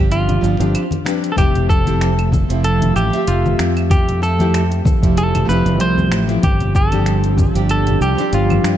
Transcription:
Already playing: G1 F3 G3 C4 D4 G4
0.00 G4
0.12 F4, closed hi-hat, shaker
0.28 closed hi-hat, high conga, low conga, shaker
0.41 G1 F3 G3 C4 D4 F4, shaker
0.58 G1 F3 G3 C4 D4 G4, closed hi-hat, high bongo, shaker
0.75 closed hi-hat, claves, shaker
0.91 closed hi-hat, high conga, shaker
1.05 F3 G3 C4 D4 B4, finger snap, high bongo, shaker
1.24 closed hi-hat, shaker
1.32 F3 A4
1.37 F1 F3 A3 C4 E4 G4 E5, kick, closed hi-hat, high conga, claves, shaker
1.55 closed hi-hat, low conga, shaker
1.69 A4, kick, high bongo, shaker
1.85 F3 A3 C4 E4 G4, closed hi-hat, high conga, shaker
2.01 finger snap, closed hi-hat, shaker
2.19 closed hi-hat, high bongo, claves, shaker
2.32 kick, high conga, low conga, shaker
2.48 F1 F3 A3 C4 E4 G4, closed hi-hat, shaker
2.64 A4, closed hi-hat, shaker
2.82 closed hi-hat, high conga, low conga, shaker
2.96 A1 G4, claves, shaker
3.10 F3 A3 C4 E5, closed hi-hat, shaker
3.16 G4
3.27 F1 F4, closed hi-hat, shaker
3.46 high conga, shaker
3.59 F2, finger snap, high bongo, shaker
3.77 closed hi-hat, claves, shaker
3.90 G4, kick, closed hi-hat, high conga, shaker
4.08 closed hi-hat, low conga, shaker
4.22 A4, high bongo, shaker
4.39 F3 A3 C4 E4 G4, closed hi-hat, high conga, shaker
4.54 finger snap, closed hi-hat, claves, shaker
4.71 closed hi-hat, high bongo, shaker
4.85 kick, high conga, low conga, shaker
5.02 F1 F3 A3 C4 E4 G4, kick, closed hi-hat, shaker
5.17 A4, closed hi-hat, shaker
5.35 closed hi-hat, high conga, low conga, claves, shaker
5.45 F1 F3 A3 C4 B4
5.50 E4 G4, shaker
5.66 F1, closed hi-hat, shaker
5.80 C2 C5, closed hi-hat, shaker
5.98 high conga, shaker
6.12 A1, finger snap, claves, shaker
6.28 F3 A3 C4 E4 G4, closed hi-hat, shaker
6.43 G1 G3 D4 G4, kick, closed hi-hat, high conga, shaker
6.60 closed hi-hat, low conga, shaker
6.75 A4, kick, high bongo, shaker
6.91 F3 G3 C4 D4 G4, closed hi-hat, high conga, claves, shaker
7.06 finger snap, closed hi-hat, shaker
7.24 closed hi-hat, high bongo, shaker
7.37 kick, high conga, low conga, shaker
7.54 G1 F3 G3 C4 D4 G4, closed hi-hat, shaker
7.69 A4, closed hi-hat, claves, shaker
7.87 closed hi-hat, high conga, low conga, shaker
8.01 C2 G4, shaker
8.15 F3 G3 C4, closed hi-hat, shaker
8.19 D4 G4
8.33 G1 F4, closed hi-hat, shaker
8.50 high conga, claves, shaker
8.64 G2, finger snap, high bongo, shaker

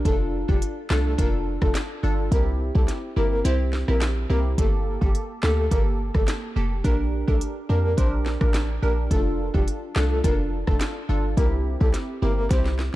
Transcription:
0.05 F1 D4 F4 A4, kick, closed hi-hat
0.48 F1 D4 F4 G4 A4, kick
0.62 closed hi-hat
0.90 C2 D4 F4 A4, snare, clap
1.05 A4
1.18 F1 D4 F4 A4 A#4, kick, closed hi-hat
1.61 F1 D4 F4 A4, kick, cross-stick
1.75 snare, clap, closed hi-hat
2.03 G1 D4 F4 A4
2.31 C2 C4 E4 G4 A#4, kick, closed hi-hat
2.75 C2 C4 E4 G4 A4, kick
2.88 snare, closed hi-hat
3.16 G1 C4 E4 G4 A#4
3.32 A#4
3.45 C2 C4 E4 G4 C5, closed hi-hat
3.73 snare
3.88 A#1 C4 E4 G4 A#4, cross-stick
4.01 snare, clap, closed hi-hat
4.30 C2 C4 E4 G4 A#4
4.58 G1 A#3 G4 A4, kick, closed hi-hat
5.01 G1 A#3 G4 A4, kick
5.15 closed hi-hat
5.43 D2 A#3 G4 A4, snare, clap
5.58 A4
5.71 G1 A#3 G4 A4 A#4, kick, closed hi-hat
6.14 G1 A#3 G4 A4, kick, cross-stick
6.28 snare, clap, closed hi-hat
6.56 F1 A#3 G4 A4
6.84 A#1 D4 G4 A#4, kick, closed hi-hat
7.27 A#1 D4 G4 A4 A#4, kick
7.41 closed hi-hat
7.69 F2 D4 G4 A#4
7.84 A#4
7.97 A#1 D4 G4 A#4 C5, kick, closed hi-hat
8.26 snare
8.41 A1 D4 G4 A#4, kick, cross-stick
8.54 snare, clap, closed hi-hat
8.82 A#1 D4 G4 A#4
9.11 F1 D4 F4 A4, kick, closed hi-hat
9.54 F1 D4 F4 G4 A4, kick
9.68 closed hi-hat
9.96 C2 D4 F4 A4, snare, clap
10.11 A4
10.24 F1 D4 F4 A4 A#4, kick, closed hi-hat
10.67 F1 D4 F4 A4, kick, cross-stick
10.81 snare, clap, closed hi-hat
11.09 G1 D4 F4 A4
11.37 C2 C4 E4 G4 A#4, kick, closed hi-hat
11.80 C2 C4 E4 G4 A4, kick
11.94 snare, closed hi-hat
12.22 G1 C4 E4 G4 A#4
12.37 A#4
12.50 C2 C4 E4 G4 C5, kick, snare, closed hi-hat
12.66 snare
12.79 snare

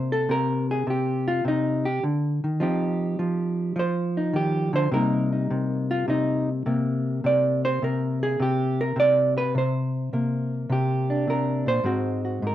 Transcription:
Already playing: C3 A#3 D4 C5
0.12 A4
0.29 C3 A#4
0.71 G#4
0.87 C3 G4
1.28 F4
1.45 C3 D#4
1.85 G4
2.04 D3
2.44 D#3
2.60 F3 C4 D#4 G4
3.19 F3
3.76 F3 C5
4.17 D#4
4.33 D#3 G4
4.73 D3 C5
4.92 C3 G3 A#3 D#4 A#4
5.33 D#4
5.51 C3
5.91 F4
6.08 C3 D#4
6.66 C3 A#3
7.24 C3 D5
7.65 C5
7.82 C3 A#4
8.23 G#4
8.40 C3 G4
8.81 A#4
8.96 C3 D5
9.38 B4
9.55 C3 C5
10.13 C3 A#3
10.70 C3 G4
11.10 D4
11.27 C3 A#4
11.66 A#2 C5
11.84 G#2 G#3 C4 F#4
12.25 F#4
12.42 G#2
12.47 A#4

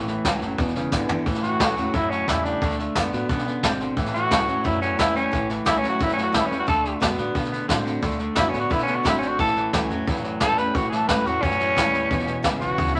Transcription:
Already playing: A1 A2
0.08 A2 E3, snare
0.25 C#2 A2 E3 F#3 A3 C#4 E4, kick, snare, hi-hat pedal
0.41 F#1 A2 F#3 C#4 E4, snare
0.58 E1 E2 B2, kick, snare
0.67 snare
0.75 E2 C#3, snare
0.92 G#1 E2 D3 E3 G#3 B3 E4, kick, snare, hi-hat pedal
1.09 E2 D3 B3 E4, floor tom
1.26 A1 A2 E3, kick, snare
1.34 snare
1.43 A2 E3 F#4, snare
1.60 C#2 A2 E3 F#3 A3 C#4 E4, kick, snare, hi-hat pedal
1.77 E2 A2 F#3 C#4 E4, snare
1.93 F#2 A2 B2 F#3 E4, kick, snare
2.10 A2 F#3 C#4, snare
2.28 E2 A2 C#3 G3 E4, kick, snare, hi-hat pedal
2.44 A2 G3 D4, snare
2.62 D2 D3 A3, kick, snare
2.70 snare
2.79 D3 A3, snare
2.95 F#2 D3 A3 B3 D4 F#4, kick, snare, hi-hat pedal
3.12 A2 D3 B3 D4 F#4, snare
3.29 B2 C#3 D3 B3, kick, snare
3.38 snare
3.46 D3 B3, snare
3.63 G#1 B2 D3 C4, kick, snare, hi-hat pedal
3.80 D3 C4, snare
3.97 A1 A2 E3, kick, snare
4.06 snare
4.14 A2 E3 F#4, snare
4.31 C#2 A2 E3 F#3 A3 C#4 E4, kick, snare, hi-hat pedal
4.48 E2 A2 F#3 C#4 E4, snare
4.64 E2 F#2 A2 F#3 E4, kick, snare
4.81 A2 F#3 C#4, snare
4.98 E2 A2 E3 G3 A3 C#4 E4, kick, snare, hi-hat pedal
5.15 A2 G3 C#4 E4, snare
5.31 A1 A2 E3, kick, snare
5.49 A2 E3, snare
5.65 C#2 A2 E3 F#3 A3 C#4 E4, kick, snare, hi-hat pedal
5.78 C#4
5.83 A2 F#3 C#4 E4, snare
5.89 F#4
5.99 E2 F#2 A2 F#3 E4, kick, snare
6.08 snare
6.13 C#4
6.17 A2 F#3, snare
6.23 F#4
6.32 E2 A2 E3 G3 A3 C#4 E4, kick, snare, hi-hat pedal
6.46 C#4
6.51 A2 G3 C#4 E4, snare
6.59 F#4
6.67 D2 D3 A3 A4, kick, snare
6.84 D3 A3, snare
7.00 F#2 D3 A3 B3 D4 F#4, kick, snare, hi-hat pedal
7.17 A2 D3 B3 D4 F#4, snare
7.35 A2 B2 D3 B3, kick, snare
7.44 snare
7.52 D3 B3, snare
7.68 A2 D3 A3 C4 D4 F#4, kick, snare, hi-hat pedal
7.85 D3 C4, snare
8.02 D2 D3 A3, kick, snare
8.11 snare
8.19 D3 A3, snare
8.35 F#2 D3 A3 B3 D4 E4 F#4, kick, snare, hi-hat pedal
8.49 C#4
8.53 A2 D3 B3 D4 F#4, snare
8.60 F#4
8.70 A2 B2 D3 B3 E4, kick, snare
8.79 snare
8.83 C#4, snare
8.88 D3 B3
8.95 F#4
9.03 G#1 D3 A3 C4 D4 F#4, kick, snare, hi-hat pedal
9.08 E4
9.19 D3 C4 C#4 F#4, snare
9.23 D4
9.28 F#4
9.39 A1 A2 E3 A4, kick, snare
9.47 snare
9.56 A2 E3, snare
9.73 C#2 A2 E3 F#3 A3 C#4 E4, kick, snare, hi-hat pedal
9.90 E2 A2 F#3 C#4 E4, snare
10.07 E2 F#2 A2 F#3, kick, snare
10.16 snare
10.24 A2 F#3, snare
10.40 E2 A2 E3 G3 A3 C#4 E4 A4, kick, snare, hi-hat pedal
10.57 A2 G3 C#4 E4 B4, snare
10.75 A1 A2 E3 F#4, kick, snare
10.90 A2 E3 A4, snare
11.08 C#2 A2 E3 F#3 A3 C#4 E4 B4, kick, snare, hi-hat pedal
11.26 E2 A2 F#3 C#4 E4 F#4, snare
11.42 E2 F#2 A2 F#3 C#4, kick, snare
11.51 snare
11.60 A2 F#3, snare
11.75 D#2 A2 E3 G3 A3 C#4 E4, kick, snare, hi-hat pedal
11.93 A2 G3 C#4 E4, snare
12.11 E1 E2 B2, kick, snare
12.20 snare
12.27 E2 B2, snare
12.43 G#1 E2 C#3 E3 G#3 B3 E4, kick, snare, hi-hat pedal
12.60 B1 E2 C#3 B3 E4 F#4, snare
12.78 D2 E2 B2 C#3, kick, snare
12.87 snare
12.95 E2 C#3 E4, snare

